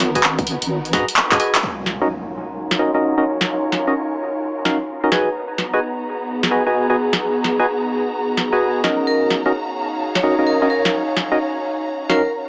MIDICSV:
0, 0, Header, 1, 8, 480
1, 0, Start_track
1, 0, Key_signature, -6, "minor"
1, 0, Tempo, 465116
1, 1682, Time_signature, 4, 2, 24, 8
1, 12888, End_track
2, 0, Start_track
2, 0, Title_t, "Vibraphone"
2, 0, Program_c, 0, 11
2, 9362, Note_on_c, 0, 70, 84
2, 9571, Note_off_c, 0, 70, 0
2, 10478, Note_on_c, 0, 73, 83
2, 10659, Note_off_c, 0, 73, 0
2, 10801, Note_on_c, 0, 70, 80
2, 10966, Note_off_c, 0, 70, 0
2, 11043, Note_on_c, 0, 70, 86
2, 11251, Note_off_c, 0, 70, 0
2, 12483, Note_on_c, 0, 70, 80
2, 12691, Note_off_c, 0, 70, 0
2, 12888, End_track
3, 0, Start_track
3, 0, Title_t, "Synth stab"
3, 0, Program_c, 1, 62
3, 159, Note_on_c, 1, 66, 90
3, 159, Note_on_c, 1, 68, 83
3, 159, Note_on_c, 1, 71, 83
3, 159, Note_on_c, 1, 75, 82
3, 159, Note_on_c, 1, 80, 100
3, 225, Note_off_c, 1, 66, 0
3, 225, Note_off_c, 1, 68, 0
3, 225, Note_off_c, 1, 71, 0
3, 226, Note_off_c, 1, 75, 0
3, 226, Note_off_c, 1, 80, 0
3, 962, Note_on_c, 1, 66, 96
3, 962, Note_on_c, 1, 68, 84
3, 962, Note_on_c, 1, 71, 88
3, 962, Note_on_c, 1, 75, 89
3, 962, Note_on_c, 1, 82, 107
3, 1088, Note_off_c, 1, 66, 0
3, 1088, Note_off_c, 1, 68, 0
3, 1088, Note_off_c, 1, 71, 0
3, 1088, Note_off_c, 1, 75, 0
3, 1088, Note_off_c, 1, 82, 0
3, 1359, Note_on_c, 1, 66, 99
3, 1359, Note_on_c, 1, 68, 88
3, 1359, Note_on_c, 1, 71, 88
3, 1359, Note_on_c, 1, 75, 87
3, 1359, Note_on_c, 1, 80, 108
3, 1422, Note_off_c, 1, 66, 0
3, 1422, Note_off_c, 1, 68, 0
3, 1422, Note_off_c, 1, 71, 0
3, 1422, Note_off_c, 1, 75, 0
3, 1422, Note_off_c, 1, 80, 0
3, 1442, Note_on_c, 1, 66, 91
3, 1442, Note_on_c, 1, 68, 82
3, 1442, Note_on_c, 1, 71, 82
3, 1442, Note_on_c, 1, 75, 84
3, 1442, Note_on_c, 1, 80, 101
3, 1622, Note_off_c, 1, 66, 0
3, 1622, Note_off_c, 1, 68, 0
3, 1622, Note_off_c, 1, 75, 0
3, 1623, Note_off_c, 1, 71, 0
3, 1623, Note_off_c, 1, 80, 0
3, 2079, Note_on_c, 1, 61, 89
3, 2079, Note_on_c, 1, 63, 84
3, 2079, Note_on_c, 1, 66, 83
3, 2079, Note_on_c, 1, 70, 84
3, 2079, Note_on_c, 1, 75, 100
3, 2145, Note_off_c, 1, 61, 0
3, 2145, Note_off_c, 1, 66, 0
3, 2146, Note_off_c, 1, 63, 0
3, 2146, Note_off_c, 1, 70, 0
3, 2146, Note_off_c, 1, 75, 0
3, 2882, Note_on_c, 1, 61, 84
3, 2882, Note_on_c, 1, 63, 75
3, 2882, Note_on_c, 1, 66, 77
3, 2882, Note_on_c, 1, 70, 79
3, 2882, Note_on_c, 1, 75, 89
3, 3001, Note_off_c, 1, 61, 0
3, 3001, Note_off_c, 1, 63, 0
3, 3001, Note_off_c, 1, 66, 0
3, 3001, Note_off_c, 1, 70, 0
3, 3001, Note_off_c, 1, 75, 0
3, 3039, Note_on_c, 1, 61, 72
3, 3039, Note_on_c, 1, 63, 65
3, 3039, Note_on_c, 1, 66, 66
3, 3039, Note_on_c, 1, 70, 65
3, 3039, Note_on_c, 1, 75, 83
3, 3241, Note_off_c, 1, 61, 0
3, 3241, Note_off_c, 1, 63, 0
3, 3241, Note_off_c, 1, 66, 0
3, 3241, Note_off_c, 1, 70, 0
3, 3241, Note_off_c, 1, 75, 0
3, 3278, Note_on_c, 1, 61, 85
3, 3278, Note_on_c, 1, 63, 81
3, 3278, Note_on_c, 1, 66, 83
3, 3278, Note_on_c, 1, 70, 83
3, 3278, Note_on_c, 1, 75, 101
3, 3345, Note_off_c, 1, 61, 0
3, 3345, Note_off_c, 1, 63, 0
3, 3345, Note_off_c, 1, 66, 0
3, 3345, Note_off_c, 1, 70, 0
3, 3345, Note_off_c, 1, 75, 0
3, 3998, Note_on_c, 1, 61, 85
3, 3998, Note_on_c, 1, 63, 77
3, 3998, Note_on_c, 1, 66, 76
3, 3998, Note_on_c, 1, 70, 75
3, 3998, Note_on_c, 1, 75, 94
3, 4065, Note_off_c, 1, 61, 0
3, 4065, Note_off_c, 1, 63, 0
3, 4065, Note_off_c, 1, 66, 0
3, 4065, Note_off_c, 1, 70, 0
3, 4065, Note_off_c, 1, 75, 0
3, 4801, Note_on_c, 1, 61, 93
3, 4801, Note_on_c, 1, 63, 80
3, 4801, Note_on_c, 1, 66, 78
3, 4801, Note_on_c, 1, 70, 85
3, 4801, Note_on_c, 1, 77, 99
3, 4927, Note_off_c, 1, 61, 0
3, 4927, Note_off_c, 1, 63, 0
3, 4927, Note_off_c, 1, 66, 0
3, 4927, Note_off_c, 1, 70, 0
3, 4927, Note_off_c, 1, 77, 0
3, 5198, Note_on_c, 1, 61, 92
3, 5198, Note_on_c, 1, 63, 83
3, 5198, Note_on_c, 1, 66, 82
3, 5198, Note_on_c, 1, 70, 86
3, 5198, Note_on_c, 1, 75, 107
3, 5261, Note_off_c, 1, 61, 0
3, 5261, Note_off_c, 1, 63, 0
3, 5261, Note_off_c, 1, 70, 0
3, 5261, Note_off_c, 1, 75, 0
3, 5262, Note_off_c, 1, 66, 0
3, 5281, Note_on_c, 1, 66, 85
3, 5281, Note_on_c, 1, 68, 77
3, 5281, Note_on_c, 1, 71, 80
3, 5281, Note_on_c, 1, 75, 82
3, 5281, Note_on_c, 1, 80, 94
3, 5462, Note_off_c, 1, 66, 0
3, 5462, Note_off_c, 1, 68, 0
3, 5462, Note_off_c, 1, 71, 0
3, 5462, Note_off_c, 1, 75, 0
3, 5462, Note_off_c, 1, 80, 0
3, 5918, Note_on_c, 1, 66, 96
3, 5918, Note_on_c, 1, 68, 83
3, 5918, Note_on_c, 1, 71, 82
3, 5918, Note_on_c, 1, 75, 85
3, 5918, Note_on_c, 1, 80, 104
3, 5985, Note_off_c, 1, 66, 0
3, 5985, Note_off_c, 1, 68, 0
3, 5985, Note_off_c, 1, 71, 0
3, 5985, Note_off_c, 1, 75, 0
3, 5985, Note_off_c, 1, 80, 0
3, 6721, Note_on_c, 1, 68, 77
3, 6721, Note_on_c, 1, 71, 76
3, 6721, Note_on_c, 1, 80, 95
3, 6722, Note_on_c, 1, 66, 84
3, 6722, Note_on_c, 1, 75, 80
3, 6841, Note_off_c, 1, 66, 0
3, 6841, Note_off_c, 1, 68, 0
3, 6841, Note_off_c, 1, 71, 0
3, 6841, Note_off_c, 1, 75, 0
3, 6841, Note_off_c, 1, 80, 0
3, 6879, Note_on_c, 1, 66, 72
3, 6879, Note_on_c, 1, 68, 65
3, 6879, Note_on_c, 1, 71, 65
3, 6879, Note_on_c, 1, 75, 67
3, 6879, Note_on_c, 1, 80, 80
3, 7081, Note_off_c, 1, 66, 0
3, 7081, Note_off_c, 1, 68, 0
3, 7081, Note_off_c, 1, 71, 0
3, 7081, Note_off_c, 1, 75, 0
3, 7081, Note_off_c, 1, 80, 0
3, 7119, Note_on_c, 1, 66, 87
3, 7119, Note_on_c, 1, 68, 83
3, 7119, Note_on_c, 1, 71, 80
3, 7119, Note_on_c, 1, 75, 82
3, 7119, Note_on_c, 1, 80, 99
3, 7185, Note_off_c, 1, 66, 0
3, 7185, Note_off_c, 1, 68, 0
3, 7185, Note_off_c, 1, 71, 0
3, 7185, Note_off_c, 1, 75, 0
3, 7186, Note_off_c, 1, 80, 0
3, 7838, Note_on_c, 1, 66, 82
3, 7838, Note_on_c, 1, 68, 78
3, 7838, Note_on_c, 1, 71, 78
3, 7838, Note_on_c, 1, 80, 97
3, 7839, Note_on_c, 1, 75, 78
3, 7905, Note_off_c, 1, 66, 0
3, 7905, Note_off_c, 1, 68, 0
3, 7905, Note_off_c, 1, 71, 0
3, 7905, Note_off_c, 1, 75, 0
3, 7905, Note_off_c, 1, 80, 0
3, 8798, Note_on_c, 1, 66, 76
3, 8798, Note_on_c, 1, 71, 67
3, 8798, Note_on_c, 1, 75, 67
3, 8799, Note_on_c, 1, 68, 68
3, 8799, Note_on_c, 1, 80, 76
3, 9102, Note_off_c, 1, 66, 0
3, 9102, Note_off_c, 1, 68, 0
3, 9102, Note_off_c, 1, 71, 0
3, 9102, Note_off_c, 1, 75, 0
3, 9102, Note_off_c, 1, 80, 0
3, 9122, Note_on_c, 1, 61, 90
3, 9122, Note_on_c, 1, 63, 87
3, 9122, Note_on_c, 1, 66, 84
3, 9122, Note_on_c, 1, 70, 88
3, 9122, Note_on_c, 1, 75, 100
3, 9721, Note_off_c, 1, 61, 0
3, 9721, Note_off_c, 1, 63, 0
3, 9721, Note_off_c, 1, 66, 0
3, 9721, Note_off_c, 1, 70, 0
3, 9721, Note_off_c, 1, 75, 0
3, 9759, Note_on_c, 1, 61, 95
3, 9759, Note_on_c, 1, 63, 83
3, 9759, Note_on_c, 1, 66, 86
3, 9759, Note_on_c, 1, 70, 84
3, 9759, Note_on_c, 1, 75, 100
3, 9826, Note_off_c, 1, 61, 0
3, 9826, Note_off_c, 1, 63, 0
3, 9826, Note_off_c, 1, 66, 0
3, 9826, Note_off_c, 1, 70, 0
3, 9826, Note_off_c, 1, 75, 0
3, 10562, Note_on_c, 1, 61, 82
3, 10562, Note_on_c, 1, 63, 81
3, 10562, Note_on_c, 1, 66, 82
3, 10562, Note_on_c, 1, 70, 81
3, 10562, Note_on_c, 1, 75, 95
3, 10681, Note_off_c, 1, 61, 0
3, 10681, Note_off_c, 1, 63, 0
3, 10681, Note_off_c, 1, 66, 0
3, 10681, Note_off_c, 1, 70, 0
3, 10681, Note_off_c, 1, 75, 0
3, 10719, Note_on_c, 1, 61, 75
3, 10719, Note_on_c, 1, 63, 66
3, 10719, Note_on_c, 1, 66, 69
3, 10719, Note_on_c, 1, 70, 64
3, 10719, Note_on_c, 1, 75, 81
3, 10921, Note_off_c, 1, 61, 0
3, 10921, Note_off_c, 1, 63, 0
3, 10921, Note_off_c, 1, 66, 0
3, 10921, Note_off_c, 1, 70, 0
3, 10921, Note_off_c, 1, 75, 0
3, 10958, Note_on_c, 1, 61, 89
3, 10958, Note_on_c, 1, 63, 83
3, 10958, Note_on_c, 1, 66, 86
3, 10958, Note_on_c, 1, 70, 83
3, 10959, Note_on_c, 1, 75, 104
3, 11025, Note_off_c, 1, 61, 0
3, 11025, Note_off_c, 1, 63, 0
3, 11025, Note_off_c, 1, 66, 0
3, 11025, Note_off_c, 1, 70, 0
3, 11025, Note_off_c, 1, 75, 0
3, 11679, Note_on_c, 1, 61, 84
3, 11679, Note_on_c, 1, 63, 76
3, 11679, Note_on_c, 1, 66, 77
3, 11679, Note_on_c, 1, 70, 75
3, 11679, Note_on_c, 1, 75, 95
3, 11745, Note_off_c, 1, 61, 0
3, 11745, Note_off_c, 1, 63, 0
3, 11745, Note_off_c, 1, 66, 0
3, 11745, Note_off_c, 1, 70, 0
3, 11745, Note_off_c, 1, 75, 0
3, 12482, Note_on_c, 1, 61, 88
3, 12482, Note_on_c, 1, 63, 82
3, 12482, Note_on_c, 1, 66, 84
3, 12482, Note_on_c, 1, 70, 83
3, 12482, Note_on_c, 1, 77, 101
3, 12608, Note_off_c, 1, 61, 0
3, 12608, Note_off_c, 1, 63, 0
3, 12608, Note_off_c, 1, 66, 0
3, 12608, Note_off_c, 1, 70, 0
3, 12608, Note_off_c, 1, 77, 0
3, 12888, End_track
4, 0, Start_track
4, 0, Title_t, "Analog synth pad"
4, 0, Program_c, 2, 89
4, 1683, Note_on_c, 2, 63, 71
4, 2096, Note_on_c, 2, 73, 85
4, 5282, Note_on_c, 2, 59, 84
4, 5827, Note_on_c, 2, 68, 77
4, 6500, Note_off_c, 2, 73, 0
4, 6650, Note_off_c, 2, 63, 0
4, 9362, Note_off_c, 2, 59, 0
4, 9363, Note_on_c, 2, 63, 70
4, 9525, Note_on_c, 2, 73, 94
4, 10516, Note_off_c, 2, 68, 0
4, 12888, Note_off_c, 2, 63, 0
4, 12888, Note_off_c, 2, 73, 0
4, 12888, End_track
5, 0, Start_track
5, 0, Title_t, "Violin section"
5, 0, Program_c, 3, 48
5, 0, Note_on_c, 3, 59, 81
5, 0, Note_on_c, 3, 63, 75
5, 0, Note_on_c, 3, 66, 75
5, 0, Note_on_c, 3, 70, 88
5, 1640, Note_off_c, 3, 66, 0
5, 1640, Note_off_c, 3, 70, 0
5, 1641, Note_off_c, 3, 59, 0
5, 1641, Note_off_c, 3, 63, 0
5, 1682, Note_on_c, 3, 61, 72
5, 1682, Note_on_c, 3, 65, 67
5, 1682, Note_on_c, 3, 66, 67
5, 1682, Note_on_c, 3, 70, 82
5, 5246, Note_off_c, 3, 61, 0
5, 5246, Note_off_c, 3, 65, 0
5, 5246, Note_off_c, 3, 66, 0
5, 5246, Note_off_c, 3, 70, 0
5, 5281, Note_on_c, 3, 59, 75
5, 5281, Note_on_c, 3, 63, 63
5, 5281, Note_on_c, 3, 66, 65
5, 5282, Note_on_c, 3, 82, 77
5, 9321, Note_off_c, 3, 59, 0
5, 9321, Note_off_c, 3, 63, 0
5, 9362, Note_on_c, 3, 61, 72
5, 9363, Note_on_c, 3, 77, 67
5, 12888, Note_off_c, 3, 61, 0
5, 12888, Note_off_c, 3, 66, 0
5, 12888, Note_off_c, 3, 77, 0
5, 12888, Note_off_c, 3, 82, 0
5, 12888, End_track
6, 0, Start_track
6, 0, Title_t, "Wobble bass"
6, 0, Program_c, 4, 39
6, 0, Note_on_c, 4, 32, 98
6, 442, Note_off_c, 4, 32, 0
6, 482, Note_on_c, 4, 32, 83
6, 593, Note_off_c, 4, 32, 0
6, 639, Note_on_c, 4, 32, 103
6, 962, Note_on_c, 4, 44, 98
6, 977, Note_off_c, 4, 32, 0
6, 1073, Note_off_c, 4, 44, 0
6, 1359, Note_on_c, 4, 44, 94
6, 1417, Note_off_c, 4, 44, 0
6, 12888, End_track
7, 0, Start_track
7, 0, Title_t, "Impact"
7, 0, Program_c, 5, 103
7, 1682, Note_on_c, 5, 60, 66
7, 3602, Note_off_c, 5, 60, 0
7, 12888, End_track
8, 0, Start_track
8, 0, Title_t, "Drums"
8, 1, Note_on_c, 9, 38, 51
8, 1, Note_on_c, 9, 46, 103
8, 105, Note_off_c, 9, 38, 0
8, 105, Note_off_c, 9, 46, 0
8, 158, Note_on_c, 9, 36, 58
8, 158, Note_on_c, 9, 42, 66
8, 242, Note_on_c, 9, 39, 107
8, 261, Note_off_c, 9, 42, 0
8, 262, Note_off_c, 9, 36, 0
8, 345, Note_off_c, 9, 39, 0
8, 398, Note_on_c, 9, 36, 101
8, 399, Note_on_c, 9, 42, 38
8, 482, Note_on_c, 9, 46, 96
8, 502, Note_off_c, 9, 36, 0
8, 502, Note_off_c, 9, 42, 0
8, 585, Note_off_c, 9, 46, 0
8, 639, Note_on_c, 9, 42, 71
8, 742, Note_off_c, 9, 42, 0
8, 879, Note_on_c, 9, 42, 38
8, 962, Note_on_c, 9, 36, 104
8, 962, Note_on_c, 9, 38, 54
8, 962, Note_on_c, 9, 46, 111
8, 982, Note_off_c, 9, 42, 0
8, 1065, Note_off_c, 9, 36, 0
8, 1065, Note_off_c, 9, 38, 0
8, 1065, Note_off_c, 9, 46, 0
8, 1119, Note_on_c, 9, 42, 67
8, 1202, Note_on_c, 9, 39, 113
8, 1222, Note_off_c, 9, 42, 0
8, 1305, Note_off_c, 9, 39, 0
8, 1359, Note_on_c, 9, 36, 59
8, 1359, Note_on_c, 9, 39, 76
8, 1359, Note_on_c, 9, 42, 55
8, 1441, Note_on_c, 9, 46, 96
8, 1462, Note_off_c, 9, 36, 0
8, 1462, Note_off_c, 9, 39, 0
8, 1462, Note_off_c, 9, 42, 0
8, 1545, Note_off_c, 9, 46, 0
8, 1599, Note_on_c, 9, 39, 99
8, 1599, Note_on_c, 9, 42, 65
8, 1702, Note_off_c, 9, 39, 0
8, 1702, Note_off_c, 9, 42, 0
8, 1921, Note_on_c, 9, 38, 46
8, 2024, Note_off_c, 9, 38, 0
8, 2798, Note_on_c, 9, 38, 63
8, 2901, Note_off_c, 9, 38, 0
8, 3518, Note_on_c, 9, 38, 62
8, 3622, Note_off_c, 9, 38, 0
8, 3841, Note_on_c, 9, 38, 47
8, 3945, Note_off_c, 9, 38, 0
8, 4802, Note_on_c, 9, 38, 52
8, 4905, Note_off_c, 9, 38, 0
8, 5282, Note_on_c, 9, 38, 61
8, 5385, Note_off_c, 9, 38, 0
8, 5761, Note_on_c, 9, 38, 46
8, 5864, Note_off_c, 9, 38, 0
8, 6638, Note_on_c, 9, 38, 62
8, 6741, Note_off_c, 9, 38, 0
8, 7358, Note_on_c, 9, 38, 58
8, 7461, Note_off_c, 9, 38, 0
8, 7681, Note_on_c, 9, 38, 43
8, 7784, Note_off_c, 9, 38, 0
8, 8642, Note_on_c, 9, 38, 45
8, 8745, Note_off_c, 9, 38, 0
8, 9121, Note_on_c, 9, 38, 60
8, 9225, Note_off_c, 9, 38, 0
8, 9602, Note_on_c, 9, 38, 43
8, 9705, Note_off_c, 9, 38, 0
8, 10478, Note_on_c, 9, 38, 58
8, 10581, Note_off_c, 9, 38, 0
8, 11199, Note_on_c, 9, 38, 55
8, 11302, Note_off_c, 9, 38, 0
8, 11523, Note_on_c, 9, 38, 45
8, 11626, Note_off_c, 9, 38, 0
8, 12482, Note_on_c, 9, 38, 46
8, 12586, Note_off_c, 9, 38, 0
8, 12888, End_track
0, 0, End_of_file